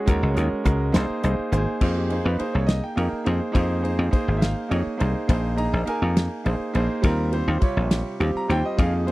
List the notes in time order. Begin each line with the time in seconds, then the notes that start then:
0.06 D#2 G#3 C#4 F#4 A#4, kick, closed hi-hat
0.23 C#2
0.34 D#2 G#3 C#4 F#4 A#4, closed hi-hat
0.53 muted slap bass stroke
0.64 C#2 G#3 C#4 F#4 A#4, kick, closed hi-hat
0.92 C2 A#3 D#4 G#4 C5, snare, closed hi-hat
1.10 muted slap bass stroke
1.23 C2 A#3 D#4 G#4 C5 D#5, closed hi-hat
1.39 muted slap bass stroke
1.51 G#1 A#3 D#4 G#4 C5 G#5, closed hi-hat
1.67 muted slap bass stroke
1.81 F2 A#3 D#4 G#4 C5, kick, crash
1.97 G4
2.09 A#3 D#4 G#4 C5, ride
2.25 F2 B4
2.38 A#3 D#4 G#4 C5, muted slap bass stroke, ride
2.53 C2 C#5
2.67 D#5, snare, ride
2.84 G5
2.96 F2 A#3 D#4 G#4 A#4, ride
3.13 muted slap bass stroke
3.24 F2 A#3 D#4 G#4 C5, ride
3.52 F2 A#3 D#4 G#4 C5, kick, ride
3.81 A#3 D#4 G#4 C5, ride
3.99 F2
4.11 A#3 D#4 G#4 C5, muted slap bass stroke, kick, ride
4.28 G#1
4.37 E5
4.41 F5, snare, ride
4.68 F2 A#3 D#4 G#4 C#5 D#5, ride
4.87 muted slap bass stroke
4.97 C2 A#3 D#4 G#4 C5, ride
5.28 A#1 A#3 D#4 G#4 C5, kick, ride
5.56 A#3 D#4 G#4 D#5 A#5, ride
5.73 A#1
5.86 A#3 D#4 G#4 A#4 G#5, ride
6.02 F2
6.17 snare, ride
6.44 A#1 A#3 D#4 G#4 C5, ride
6.60 muted slap bass stroke
6.74 A#1 A#3 D#4 G#4 C5, ride
7.02 D#2 G3 C4 F4 A#4, kick, ride
7.32 G3 C4 F4 C5, ride
7.48 D#2
7.60 C3 G3 F4 C#5, muted slap bass stroke, kick, ride
7.77 A#1
7.91 snare, ride
8.19 D#2 G3 C4 F4 G4, ride
8.35 A#5, muted slap bass stroke
8.48 D#2 G3 C4 F4 C5 G5, ride
8.65 D#5
8.77 F2 F3 A#3 D#4 G#4 F5, kick, ride
8.94 G#4
9.06 F3 A#3 D#4 G#4 C5, ride